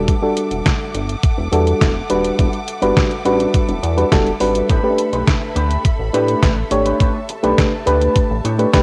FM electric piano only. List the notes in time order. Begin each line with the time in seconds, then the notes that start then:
Already playing: G3 D4 F#4 A4
0.22 G3 D4 F#4 A4
1.52 G3 D4 F#4 A4
2.10 G3 D4 F#4 B4
2.82 G3 D4 F#4 B4
3.25 G3 D4 F#4 B4
3.97 G3 D4 F#4 B4
4.11 G3 D4 F#4 A4
4.40 G3 D4 F#4 B4
4.83 A3 C#4 G4 B4
4.90 D4
6.13 A3 D4 G4 B4
6.71 A3 D4 G4 C#5
7.43 A3 D4 G4 B4
7.86 A3 D4 G4 B4
8.58 A3 D4 G4 B4
8.73 A3 D4 G4 B4